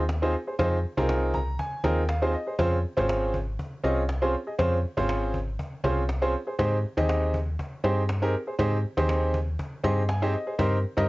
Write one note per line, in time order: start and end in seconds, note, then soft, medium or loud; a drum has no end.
0.00 0.36 D#2 medium
0.09 cajon slap loud
0.22 0.33 C4 medium
0.22 0.33 D#4 medium
0.22 0.33 F4 medium
0.22 0.33 G#4 medium
0.22 0.33 C5 loud
0.47 0.53 G#4 medium
0.47 0.53 C5 medium
0.59 0.86 F2 medium
0.59 0.76 C4 medium
0.59 0.76 D#4 medium
0.59 0.76 F4 medium
0.59 0.77 G#4 medium
0.59 0.77 C5 loud
0.59 cajon bass loud
0.84 cajon slap soft
0.97 1.58 C2 loud
0.97 1.36 C4 medium
0.97 1.36 D#4 medium
0.97 1.36 F4 medium
0.97 1.36 G#4 medium
0.97 1.37 A#4 loud
0.97 cajon bass medium
1.09 cajon slap loud
1.34 1.57 A#5 medium
1.34 cajon bass medium
1.59 1.82 G#5 medium
1.59 cajon bass loud
1.84 2.36 D#2 loud
1.84 2.01 C4 medium
1.84 2.01 D#4 medium
1.84 2.02 F4 medium
1.84 2.02 G#4 medium
1.84 2.02 A#4 loud
1.84 2.07 G5 medium
1.84 cajon bass medium
2.09 2.32 F5 medium
2.09 cajon slap loud
2.22 2.33 C4 medium
2.22 2.33 D#4 medium
2.22 2.33 F4 medium
2.22 2.33 G#4 medium
2.22 2.33 C5 loud
2.34 2.57 D#5 medium
2.47 2.52 G#4 medium
2.47 2.53 C5 medium
2.59 2.86 F2 loud
2.59 2.76 C4 medium
2.59 2.76 C#4 medium
2.59 2.76 F4 medium
2.59 2.76 G#4 medium
2.59 2.77 C5 loud
2.59 cajon bass loud
2.84 cajon slap soft
2.97 3.58 G#1 loud
2.97 3.36 C4 medium
2.97 3.36 C#4 medium
2.97 3.36 F4 medium
2.97 3.36 G#4 medium
2.97 3.36 C5 loud
2.97 cajon bass medium
3.09 cajon slap loud
3.34 cajon bass medium
3.59 cajon bass loud
3.84 4.36 C2 medium
3.84 4.01 C4 medium
3.84 4.01 C#4 medium
3.84 4.01 F4 medium
3.84 4.02 G#4 medium
3.84 4.02 D#5 medium
3.84 cajon slap soft
4.09 cajon slap loud
4.22 4.33 C4 medium
4.22 4.33 C#4 medium
4.22 4.33 F4 medium
4.22 4.33 G#4 medium
4.22 4.33 C5 medium
4.47 4.52 G#4 medium
4.47 4.53 D#5 medium
4.59 4.86 F2 loud
4.59 4.76 C4 medium
4.59 4.76 C#4 medium
4.59 4.76 F4 medium
4.59 4.76 G#4 medium
4.59 4.76 C5 loud
4.59 cajon bass loud
4.84 cajon slap soft
4.97 5.58 G#1 loud
4.97 5.36 C4 medium
4.97 5.36 C#4 medium
4.97 5.36 F4 medium
4.97 5.36 G#4 medium
4.97 5.36 C5 loud
4.97 cajon bass loud
5.09 cajon slap loud
5.34 cajon bass medium
5.59 cajon bass loud
5.73 cajon slap soft
5.84 6.36 C2 loud
5.84 6.01 C4 medium
5.84 6.01 C#4 medium
5.84 6.01 F4 medium
5.84 6.02 G#4 medium
5.84 6.02 C5 loud
5.84 cajon bass medium
5.97 cajon slap soft
6.09 cajon slap loud
6.22 6.33 C4 medium
6.22 6.33 C#4 medium
6.22 6.33 F4 medium
6.22 6.33 G#4 medium
6.22 6.33 C5 loud
6.47 6.52 G#4 medium
6.47 6.53 C5 medium
6.59 6.86 G#2 loud
6.59 6.76 C4 medium
6.59 6.76 D#4 medium
6.59 6.76 G4 medium
6.59 6.76 G#4 medium
6.59 6.77 C5 loud
6.59 cajon bass loud
6.84 cajon slap soft
6.97 7.58 D#2 loud
6.97 7.36 C4 medium
6.97 7.36 D#4 medium
6.97 7.36 G4 medium
6.97 7.36 G#4 medium
6.97 7.36 D#5 loud
6.97 cajon bass loud
7.09 cajon slap loud
7.34 cajon bass loud
7.59 cajon bass loud
7.84 8.36 G2 loud
7.84 8.01 C4 medium
7.84 8.01 D#4 medium
7.84 8.01 G4 medium
7.84 8.02 G#4 medium
7.84 8.02 C5 medium
7.84 cajon slap soft
8.09 cajon slap loud
8.22 8.33 C4 medium
8.22 8.33 D#4 medium
8.22 8.33 G4 medium
8.22 8.33 G#4 medium
8.22 8.33 A#4 loud
8.47 8.52 G#4 medium
8.47 8.53 C5 medium
8.59 8.86 G#2 loud
8.59 8.76 C4 medium
8.59 8.76 D#4 medium
8.59 8.76 G4 medium
8.59 8.76 G#4 medium
8.59 8.77 C5 loud
8.59 cajon bass loud
8.84 cajon slap soft
8.97 9.58 D#2 loud
8.97 9.36 C4 medium
8.97 9.36 D#4 medium
8.97 9.36 G4 medium
8.97 9.36 G#4 medium
8.97 9.36 C5 loud
8.97 cajon bass loud
9.09 cajon slap loud
9.34 cajon bass loud
9.59 cajon bass loud
9.84 10.36 G2 loud
9.84 10.01 C4 medium
9.84 10.01 D#4 medium
9.84 10.01 G4 medium
9.84 10.01 G#4 medium
9.84 10.02 D#5 loud
9.84 10.07 C6 medium
9.84 cajon bass medium
10.09 10.32 G#5 medium
10.09 cajon slap loud
10.22 10.33 C4 medium
10.22 10.33 D#4 medium
10.22 10.33 G4 medium
10.22 10.33 G#4 medium
10.22 10.33 C5 loud
10.34 10.57 D#5 medium
10.47 10.52 G#4 medium
10.47 10.53 C5 medium
10.59 10.86 G2 loud
10.59 10.76 C4 medium
10.59 10.76 D#4 medium
10.59 10.76 G4 medium
10.59 10.76 A#4 medium
10.59 10.76 C5 loud
10.59 cajon bass loud
10.84 cajon slap soft
10.97 11.09 G2 loud
10.97 11.09 C4 medium
10.97 11.09 D#4 medium
10.97 11.09 G4 medium
10.97 11.09 A#4 medium
10.97 11.09 D#5 loud
10.97 cajon bass loud